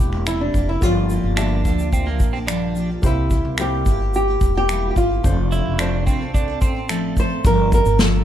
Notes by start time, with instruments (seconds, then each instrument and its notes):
Already playing: steel-string acoustic guitar A#3 E4 G4, upright piano A#3 E4 G4 C5, nylon-string guitar G4
0.00 upright bass E1
0.12 steel-string acoustic guitar A#3 E4 G4, finger snap
0.26 steel-string acoustic guitar C3 G3 A#3 E4 G4, nylon-string guitar E4, finger snap, shaker
0.41 nylon-string guitar D4
0.54 upright bass F1, steel-string acoustic guitar G3 A#3 E4 G4, kick, shaker
0.69 steel-string acoustic guitar A#3 E4 G4, nylon-string guitar E4
0.81 upright bass G1, steel-string acoustic guitar G2 D3 F3 A#3 D4 G4, upright piano A#3 F4 G4 C#5, nylon-string guitar F4, kick, shaker
0.90 upright piano D5
1.09 steel-string acoustic guitar F3 A#3 D4 G4, shaker
1.24 upright bass G1
1.36 steel-string acoustic guitar G2 D3 F3 A#3 D4 G4, upright piano A#3 F4 G4 E5, clean electric guitar D4, finger snap, shaker
1.65 upright bass D2, steel-string acoustic guitar F3 A#3 D4 G4, kick, shaker
1.78 steel-string acoustic guitar F3 A#3 D4 G4, shaker
1.93 clean electric guitar C4, kick, shaker
2.06 steel-string acoustic guitar F3 A#3 D4 G4, clean electric guitar A#3
2.20 upright bass A#1, kick, shaker
2.33 steel-string acoustic guitar F3 A#3 D4 G4, clean electric guitar C4
2.47 steel-string acoustic guitar G2 D3 F3 A#3 D4 G4, clean electric guitar D4, finger snap, shaker
2.75 steel-string acoustic guitar F3 A#3 D4 G4, shaker
2.89 steel-string acoustic guitar F3 A#3 D4 G4
3.02 upright bass C2, steel-string acoustic guitar C3 G3 A#3 E4 G4, upright piano A#3 E4 G4 C5, kick, shaker
3.06 nylon-string guitar E4
3.30 steel-string acoustic guitar G3 A#3 E4 G4, kick, shaker
3.45 upright bass C2
3.58 steel-string acoustic guitar C3 G3 A#3 E4 G4, upright piano A#3 E4 G4 C5, nylon-string guitar G4, finger snap, shaker
3.86 upright bass G1, steel-string acoustic guitar G3 A#3 E4 G4, kick, shaker
4.00 steel-string acoustic guitar A#3 E4 G4
4.14 nylon-string guitar G4, shaker
4.28 steel-string acoustic guitar A#3 E4 G4
4.41 upright bass E1, kick, shaker
4.55 steel-string acoustic guitar A#3 E4 G4, nylon-string guitar G4
4.69 steel-string acoustic guitar C3 G3 A#3 E4 G4, finger snap, shaker
4.91 nylon-string guitar G4
4.96 upright bass G1, steel-string acoustic guitar G3 A#3 E4 G4, nylon-string guitar F4, kick, shaker
5.09 steel-string acoustic guitar A#3 E4 G4
5.23 upright bass F1, steel-string acoustic guitar F3 C4 D4 A4, upright piano A3 D4 F4 C5, kick, shaker
5.51 steel-string acoustic guitar F3 C4 D4 A4, clean electric guitar E4, shaker
5.65 upright bass F1
5.78 steel-string acoustic guitar F3 C4 D4 A4, upright piano A3 D4 F4 C5, clean electric guitar D4, finger snap, shaker
6.06 upright bass C2, steel-string acoustic guitar F3 C4 D4 A4, clean electric guitar C4, kick, shaker
6.20 steel-string acoustic guitar C4 D4 A4
6.34 clean electric guitar D4, kick, shaker
6.48 steel-string acoustic guitar C4 D4 A4
6.61 upright bass A1, clean electric guitar C4, kick, shaker
6.75 steel-string acoustic guitar C4 D4 A4
6.89 steel-string acoustic guitar F3 C4 D4 A4, clean electric guitar A3, finger snap, shaker
7.16 steel-string acoustic guitar F3 C4 D4 A4, nylon-string guitar C5, kick, shaker
7.30 steel-string acoustic guitar C4 D4 A4
7.44 upright bass G1, steel-string acoustic guitar G2 D3 F3 A#3 D4 G4, nylon-string guitar A#4, kick, shaker
7.72 nylon-string guitar A#4, kick, shaker
7.85 upright bass G1, steel-string acoustic guitar F3 A#3 D4 G4, shaker
7.99 steel-string acoustic guitar G2 D3 F3 A#3 D4 G4, nylon-string guitar A4, snare, shaker